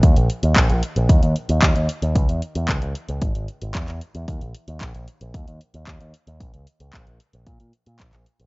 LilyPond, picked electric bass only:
\new Staff \with { instrumentName = "Picked electric bass" } { \clef bass \time 4/4 \key ees \mixolydian \tempo 4 = 113 ees,16 bes,,16 r16 ees,16 bes,,16 bes,,16 r16 bes,,16 ees,16 ees,16 r16 ees,16 ees,16 ees,16 r16 ees,16 | des,16 fes,16 r16 fes,16 des,16 des,16 r16 des,16 aes,,16 aes,,16 r16 aes,,16 fes,16 fes,16 r16 fes,16 | ees,16 bes,,16 r16 ees,16 bes,,16 bes,,16 r16 bes,,16 ees,16 ees,16 r16 ees,16 ees,16 ees,16 r16 ees,16 | bes,,16 des,16 r16 des,16 bes,,16 bes,,16 r16 bes,,16 bes,16 bes,16 r16 bes,16 bes,,16 bes,,16 r16 bes,,16 | }